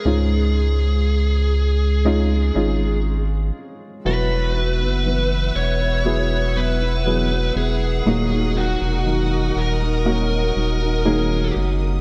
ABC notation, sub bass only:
X:1
M:4/4
L:1/16
Q:1/4=60
K:Elyd
V:1 name="Sub bass" clef=bass
C,,8- C,,2 G,,,4 z2 | E,,,3 F,,,3 E,,,8 E,,,2 | D,,,3 E,,,3 D,,,4 D,,,4 F,,,2 |]